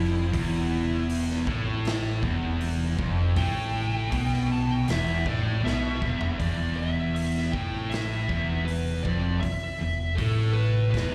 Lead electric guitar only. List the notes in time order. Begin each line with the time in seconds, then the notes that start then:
Already playing: E4
3.37 G5
4.52 A5
4.71 G5
4.89 E5
5.27 D5
5.65 E5
6.39 D5
6.77 E5
7.15 E5
7.52 G5
7.90 E5
8.65 B4
9.03 D5
9.40 E5
10.15 A4
10.53 B4
10.90 B4